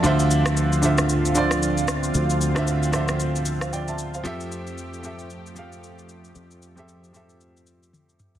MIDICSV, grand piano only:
0, 0, Header, 1, 2, 480
1, 0, Start_track
1, 0, Key_signature, -1, "minor"
1, 0, Tempo, 526316
1, 35, Time_signature, 4, 2, 24, 8
1, 7652, End_track
2, 0, Start_track
2, 0, Title_t, "Grand piano"
2, 0, Program_c, 0, 0
2, 0, Control_c, 0, 64, 127
2, 0, Note_on_c, 0, 81, 64
2, 25, Note_on_c, 0, 50, 105
2, 33, Note_on_c, 0, 62, 99
2, 41, Note_on_c, 0, 65, 99
2, 45, Control_c, 0, 64, 0
2, 50, Note_on_c, 0, 72, 99
2, 59, Note_on_c, 0, 76, 115
2, 166, Note_off_c, 0, 81, 0
2, 192, Control_c, 0, 64, 127
2, 621, Note_off_c, 0, 50, 0
2, 625, Note_off_c, 0, 62, 0
2, 629, Note_off_c, 0, 65, 0
2, 634, Note_off_c, 0, 72, 0
2, 638, Note_off_c, 0, 76, 0
2, 744, Note_on_c, 0, 50, 88
2, 752, Note_on_c, 0, 62, 75
2, 761, Note_on_c, 0, 65, 76
2, 769, Note_on_c, 0, 72, 73
2, 778, Note_on_c, 0, 76, 91
2, 1149, Note_off_c, 0, 50, 0
2, 1153, Note_off_c, 0, 62, 0
2, 1157, Note_off_c, 0, 65, 0
2, 1161, Note_off_c, 0, 72, 0
2, 1166, Note_off_c, 0, 76, 0
2, 1224, Note_on_c, 0, 50, 83
2, 1232, Note_on_c, 0, 62, 76
2, 1241, Note_on_c, 0, 65, 78
2, 1250, Note_on_c, 0, 72, 76
2, 1258, Note_on_c, 0, 74, 93
2, 2005, Note_off_c, 0, 50, 0
2, 2009, Note_off_c, 0, 62, 0
2, 2013, Note_off_c, 0, 65, 0
2, 2018, Note_off_c, 0, 72, 0
2, 2022, Note_off_c, 0, 74, 0
2, 2321, Note_on_c, 0, 50, 84
2, 2330, Note_on_c, 0, 62, 78
2, 2338, Note_on_c, 0, 65, 76
2, 2347, Note_on_c, 0, 72, 73
2, 2355, Note_on_c, 0, 76, 95
2, 2608, Note_off_c, 0, 50, 0
2, 2612, Note_off_c, 0, 62, 0
2, 2616, Note_off_c, 0, 65, 0
2, 2621, Note_off_c, 0, 72, 0
2, 2625, Note_off_c, 0, 76, 0
2, 2662, Note_on_c, 0, 50, 83
2, 2671, Note_on_c, 0, 62, 78
2, 2678, Note_on_c, 0, 65, 74
2, 2687, Note_on_c, 0, 72, 79
2, 2696, Note_on_c, 0, 76, 93
2, 3161, Note_off_c, 0, 72, 0
2, 3165, Note_off_c, 0, 76, 0
2, 3299, Note_on_c, 0, 77, 63
2, 3304, Note_on_c, 0, 72, 55
2, 3392, Note_off_c, 0, 77, 0
2, 3395, Note_off_c, 0, 72, 0
2, 3399, Note_on_c, 0, 79, 71
2, 3404, Note_on_c, 0, 74, 58
2, 3444, Note_off_c, 0, 50, 0
2, 3448, Note_off_c, 0, 62, 0
2, 3452, Note_off_c, 0, 65, 0
2, 3529, Note_off_c, 0, 79, 0
2, 3532, Note_off_c, 0, 74, 0
2, 3539, Note_on_c, 0, 81, 72
2, 3544, Note_on_c, 0, 76, 62
2, 3764, Note_off_c, 0, 81, 0
2, 3767, Note_off_c, 0, 76, 0
2, 3779, Note_on_c, 0, 77, 62
2, 3783, Note_on_c, 0, 72, 54
2, 3862, Note_on_c, 0, 53, 106
2, 3870, Note_on_c, 0, 60, 97
2, 3879, Note_on_c, 0, 67, 100
2, 3886, Control_c, 0, 64, 0
2, 3888, Note_on_c, 0, 69, 100
2, 3896, Note_on_c, 0, 76, 124
2, 4004, Note_off_c, 0, 77, 0
2, 4007, Note_off_c, 0, 72, 0
2, 4033, Control_c, 0, 64, 127
2, 4460, Note_off_c, 0, 53, 0
2, 4464, Note_off_c, 0, 60, 0
2, 4468, Note_off_c, 0, 67, 0
2, 4473, Note_off_c, 0, 69, 0
2, 4477, Note_off_c, 0, 76, 0
2, 4583, Note_on_c, 0, 53, 80
2, 4591, Note_on_c, 0, 60, 74
2, 4600, Note_on_c, 0, 67, 77
2, 4608, Note_on_c, 0, 69, 78
2, 4616, Note_on_c, 0, 76, 90
2, 4988, Note_off_c, 0, 53, 0
2, 4992, Note_off_c, 0, 60, 0
2, 4996, Note_off_c, 0, 67, 0
2, 5001, Note_off_c, 0, 69, 0
2, 5005, Note_off_c, 0, 76, 0
2, 5061, Note_on_c, 0, 53, 85
2, 5070, Note_on_c, 0, 60, 77
2, 5078, Note_on_c, 0, 67, 80
2, 5086, Note_on_c, 0, 69, 77
2, 5095, Note_on_c, 0, 77, 92
2, 5844, Note_off_c, 0, 53, 0
2, 5848, Note_off_c, 0, 60, 0
2, 5852, Note_off_c, 0, 67, 0
2, 5856, Note_off_c, 0, 69, 0
2, 5861, Note_off_c, 0, 77, 0
2, 6160, Note_on_c, 0, 53, 84
2, 6168, Note_on_c, 0, 60, 75
2, 6177, Note_on_c, 0, 67, 78
2, 6186, Note_on_c, 0, 69, 75
2, 6194, Note_on_c, 0, 76, 90
2, 6447, Note_off_c, 0, 53, 0
2, 6451, Note_off_c, 0, 60, 0
2, 6456, Note_off_c, 0, 67, 0
2, 6460, Note_off_c, 0, 69, 0
2, 6464, Note_off_c, 0, 76, 0
2, 6501, Note_on_c, 0, 53, 80
2, 6510, Note_on_c, 0, 60, 76
2, 6518, Note_on_c, 0, 67, 78
2, 6527, Note_on_c, 0, 69, 76
2, 6535, Note_on_c, 0, 76, 91
2, 7284, Note_off_c, 0, 53, 0
2, 7288, Note_off_c, 0, 60, 0
2, 7292, Note_off_c, 0, 67, 0
2, 7296, Note_off_c, 0, 69, 0
2, 7301, Note_off_c, 0, 76, 0
2, 7652, End_track
0, 0, End_of_file